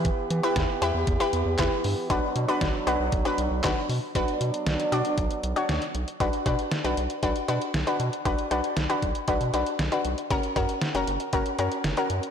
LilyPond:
<<
  \new Staff \with { instrumentName = "Synth pluck" } { \time 4/4 \key b \minor \tempo 4 = 117 <e' g' b'>8 r16 <e' g' b'>8 r16 <e' g' b'>8 r16 <e' g' b'>8 r16 <e' g' b'>8 r8 | <d' fis' b'>8 r16 <d' fis' b'>8 r16 <d' fis' b'>8 r16 <d' fis' b'>8 r16 <d' fis' b'>8 r8 | <d' fis' b'>8. r8. <d' fis' d''>8. r8 <d' fis' cis''>8. r8 | <d' fis' b'>16 r16 <d' fis' b'>8 r16 <d' fis' b'>8 r16 <d' fis' b'>16 r16 <d' fis' b'>8 r16 <d' fis' b'>8 r16 |
<d' fis' b'>16 r16 <d' fis' b'>8 r16 <d' fis' b'>8 r16 <d' fis' b'>16 r16 <d' fis' b'>8 r16 <d' fis' b'>8 r16 | <cis' fis' ais'>16 r16 <cis' fis' ais'>8 r16 <cis' fis' ais'>8 r16 <cis' fis' ais'>16 r16 <cis' fis' ais'>8 r16 <cis' fis' ais'>8 r16 | }
  \new Staff \with { instrumentName = "French horn section" } { \time 4/4 \key b \minor << { <e g'>1 | <fis d'>1 | <fis d'>1 | r1 |
r1 | r1 | } \\ { b1~ | b1 | b1 | r1 |
r1 | r1 | } >> }
  \new Staff \with { instrumentName = "Analog synth bass" } { \clef bass \time 4/4 \key b \minor r8 e16 r16 e,16 r16 e,16 e,16 e,16 r16 e,16 e,16 e,16 r16 g,16 r16 | b,,16 r16 b,16 r16 b,,16 r16 b,,16 b,,16 b,,16 r16 b,,16 b,,16 b,,16 r16 b,16 r16 | b,,16 r16 b,16 r16 b,,16 r16 b,16 r16 b,,16 r16 b,,16 r16 d,16 r16 b,,16 r16 | b,,16 r16 b,16 r8 b,,16 b,,16 r16 b,,16 r16 b,16 r16 b,,16 r16 b,16 r16 |
b,,16 r16 b,,16 r16 b,,16 r16 b,,16 r16 b,,16 b,16 b,,16 r16 b,,16 r16 b,,16 r16 | fis,,16 r16 fis,16 r8 fis,,16 fis,,16 r16 fis,,16 r16 fis,16 r16 fis,,16 r16 fis,16 r16 | }
  \new DrumStaff \with { instrumentName = "Drums" } \drummode { \time 4/4 <hh bd>8 hh8 <hh bd sn>8 hh8 <hh bd>8 hh8 <hc hh bd sn>8 hho8 | <hh bd>8 hh8 <hh bd sn>8 hh8 <hh bd>8 hh8 <hc hh bd sn>8 hho8 | <hh bd>16 hh16 hh16 hh16 <hh sn>16 hh16 hh16 hh16 <hh bd>16 hh16 hh16 hh16 <hh sn>16 hh16 hh16 hh16 | <hh bd>16 hh16 <hh bd>16 hh16 <hh sn>16 hh16 hh16 hh16 <hh bd>16 hh16 hh16 hh16 <hh sn>16 hh16 hh16 hh16 |
<hh bd>16 hh16 hh16 hh16 <hh sn>16 hh16 <hh bd>16 hh16 <hh bd>16 hh16 hh16 hh16 <hh sn>16 hh16 hh16 hh16 | <hh bd>16 hh16 <hh bd>16 hh16 <hh sn>16 hh16 hh16 hh16 <hh bd>16 hh16 hh16 hh16 <hh sn>16 hh16 hh16 hh16 | }
>>